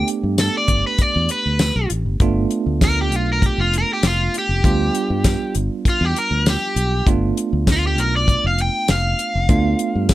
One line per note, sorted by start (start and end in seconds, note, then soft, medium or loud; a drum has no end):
0.00 2.17 A3 medium
0.00 2.17 B3 medium
0.00 2.17 D4 medium
0.00 2.17 G4 medium
0.08 closed hi-hat medium
0.23 0.48 G2 medium
0.38 0.55 A4 medium
0.38 snare medium
0.38 closed hi-hat medium
0.38 tambourine loud
0.57 0.85 D5 medium
0.68 0.82 G1 medium
0.68 kick medium
0.68 closed hi-hat medium
0.87 1.02 B4 medium
0.98 1.30 D5 medium
0.98 kick medium
0.98 closed hi-hat medium
1.16 1.27 E2 medium
1.29 1.90 B4 medium
1.29 closed hi-hat medium
1.46 1.70 D2 medium
1.59 snare loud
1.59 closed hi-hat medium
1.59 tambourine medium
1.76 1.89 B1 medium
1.90 2.05 A1 medium
1.90 closed hi-hat medium
2.06 2.19 G1 medium
2.20 2.45 G1 medium
2.20 4.60 A3 medium
2.20 4.60 B3 medium
2.20 4.60 D4 medium
2.20 4.60 F4 medium
2.20 kick loud
2.20 closed hi-hat medium
2.51 closed hi-hat medium
2.66 3.12 D2 medium
2.81 2.98 A#4 loud
2.81 kick medium
2.81 snare loud
2.81 closed hi-hat medium
2.81 tambourine loud
3.01 3.16 G4 medium
3.12 3.49 B1 medium
3.12 closed hi-hat medium
3.16 3.29 F4 medium
3.33 3.46 A#4 medium
3.42 3.59 G4 medium
3.42 kick medium
3.42 closed hi-hat medium
3.58 3.83 F1 loud
3.58 3.74 F4 medium
3.73 closed hi-hat medium
3.78 3.91 A#4 medium
3.93 4.05 G4 medium
4.03 4.27 F1 medium
4.03 snare loud
4.03 closed hi-hat medium
4.03 tambourine loud
4.07 4.35 F4 medium
4.34 closed hi-hat medium
4.38 5.54 G4 loud
4.49 4.61 F1 medium
4.64 4.89 D2 medium
4.64 7.03 G3 medium
4.64 7.03 B3 medium
4.64 7.03 D4 medium
4.64 7.03 F4 medium
4.64 kick loud
4.64 closed hi-hat medium
4.95 closed hi-hat medium
5.10 5.34 G2 medium
5.24 kick medium
5.24 snare loud
5.24 closed hi-hat medium
5.24 tambourine loud
5.55 5.68 G1 loud
5.55 closed hi-hat medium
5.85 6.05 F4 loud
5.85 muted fingered electric bass stroke soft
5.85 kick medium
5.85 closed hi-hat medium
6.01 6.13 E2 medium
6.05 6.17 G4 medium
6.16 6.46 A#4 medium
6.16 closed hi-hat medium
6.31 6.55 D2 medium
6.46 7.07 G4 loud
6.46 snare loud
6.46 closed hi-hat medium
6.46 tambourine loud
6.76 7.00 B1 medium
6.76 closed hi-hat medium
7.07 7.31 G1 medium
7.07 9.45 A3 medium
7.07 9.46 B3 medium
7.07 9.46 D4 medium
7.07 9.46 F4 medium
7.07 kick loud
7.07 closed hi-hat medium
7.37 closed hi-hat medium
7.53 7.98 D2 medium
7.67 kick medium
7.67 snare loud
7.67 closed hi-hat medium
7.67 tambourine loud
7.72 7.85 F4 loud
7.87 7.99 G4 medium
7.98 8.35 B1 medium
7.98 8.14 A#4 medium
7.98 closed hi-hat medium
8.16 8.44 D5 medium
8.28 kick medium
8.28 closed hi-hat medium
8.44 8.68 F1 loud
8.44 8.60 F5 medium
8.58 8.89 G5 medium
8.58 closed hi-hat medium
8.88 9.13 F1 loud
8.88 10.14 F5 loud
8.88 snare medium
8.88 closed hi-hat medium
8.88 tambourine loud
9.19 closed hi-hat medium
9.35 9.47 F1 medium
9.49 9.74 D2 loud
9.49 10.14 A3 medium
9.49 10.14 B3 medium
9.49 10.14 D4 medium
9.49 10.14 F4 medium
9.49 kick loud
9.49 closed hi-hat medium
9.79 closed hi-hat medium
9.95 10.14 G2 medium
10.09 kick medium
10.09 snare loud
10.09 closed hi-hat medium
10.09 tambourine loud